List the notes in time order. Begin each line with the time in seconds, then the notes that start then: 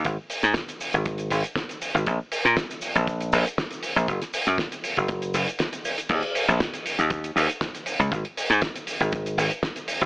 0.05 G#1, kick, closed hi-hat, shaker
0.30 open hi-hat, shaker
0.43 G#2, closed hi-hat, shaker
0.54 kick, snare, closed hi-hat, shaker
0.69 closed hi-hat, shaker
0.81 open hi-hat, shaker
0.93 G#1, closed hi-hat, shaker
1.06 kick, closed hi-hat, shaker
1.18 closed hi-hat, shaker
1.30 G#1, open hi-hat, shaker
1.44 closed hi-hat, shaker
1.56 kick, snare, closed hi-hat, shaker
1.69 closed hi-hat, shaker
1.82 open hi-hat, shaker
1.95 G#1, closed hi-hat, shaker
2.06 A#1, kick, closed hi-hat, shaker
2.32 open hi-hat, shaker
2.45 A#2, closed hi-hat, shaker
2.57 kick, snare, closed hi-hat, shaker
2.71 closed hi-hat, shaker
2.82 open hi-hat, shaker
2.95 A#1, closed hi-hat, shaker
3.07 kick, closed hi-hat, shaker
3.21 closed hi-hat, shaker
3.33 A#1, open hi-hat, shaker
3.46 closed hi-hat, shaker
3.58 kick, snare, closed hi-hat, shaker
3.71 closed hi-hat, shaker
3.83 open hi-hat, shaker
3.96 A#1, closed hi-hat, shaker
4.08 F#1, kick, closed hi-hat, shaker
4.22 snare, closed hi-hat, shaker
4.34 open hi-hat, shaker
4.47 F#2, closed hi-hat, shaker
4.58 kick, snare, closed hi-hat, shaker
4.72 closed hi-hat, shaker
4.84 open hi-hat, shaker
4.97 F#1, kick, closed hi-hat, shaker
5.08 kick, closed hi-hat, shaker
5.22 closed hi-hat, shaker
5.34 F#1, open hi-hat, shaker
5.48 closed hi-hat, shaker
5.59 snare, closed hi-hat, shaker
5.73 closed hi-hat, shaker
5.85 open hi-hat, shaker
5.98 closed hi-hat, shaker
6.09 D#2, kick, closed hi-hat, crash, shaker
6.23 closed hi-hat
6.35 open hi-hat, shaker
6.48 A#1, closed hi-hat, shaker
6.60 kick, snare, closed hi-hat, shaker
6.74 closed hi-hat, shaker
6.86 open hi-hat, shaker
6.99 D#2, closed hi-hat, shaker
7.10 kick, closed hi-hat, shaker
7.24 closed hi-hat, shaker
7.36 D#2, open hi-hat, shaker
7.50 closed hi-hat, shaker
7.61 kick, snare, closed hi-hat, shaker
7.75 closed hi-hat, shaker
7.86 open hi-hat, shaker
7.99 C#2, closed hi-hat, shaker
8.12 G#1, kick, closed hi-hat, shaker
8.25 closed hi-hat
8.37 open hi-hat, shaker
8.50 G#2, closed hi-hat, shaker
8.62 kick, snare, closed hi-hat, shaker
8.76 closed hi-hat, shaker
8.87 open hi-hat, shaker
9.00 G#1, closed hi-hat, shaker
9.12 kick, closed hi-hat, shaker
9.26 closed hi-hat, shaker
9.37 G#1, open hi-hat, shaker
9.51 closed hi-hat, shaker
9.63 kick, snare, closed hi-hat, shaker
9.76 closed hi-hat, shaker
9.88 open hi-hat, shaker
10.01 F#1, closed hi-hat, shaker